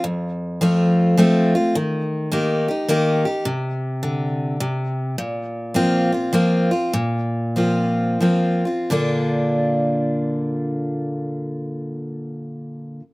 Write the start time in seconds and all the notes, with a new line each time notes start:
0.04 F2
0.61 F3 A3 C4 F4
1.17 F3 A3 C4 F4
1.55 C4 F4
1.75 D#3
2.32 D#3 A#3 D#4 G4
2.68 D#4 G4
2.89 D#3 A#3 D#4 G4
3.25 D#4 G4
3.45 C3
4.03 D3
4.60 C3
5.18 A#2
5.74 F3 A#3 C4 F4
6.12 C4 F4
6.33 F3 A#3 C4 F4
6.71 C4 F4
6.93 A#2
7.56 F3 A#3 C4 F4
8.21 F3 A#3 C4 F4
8.65 C4 F4
8.90 A#2 D3 A#3 D4 F4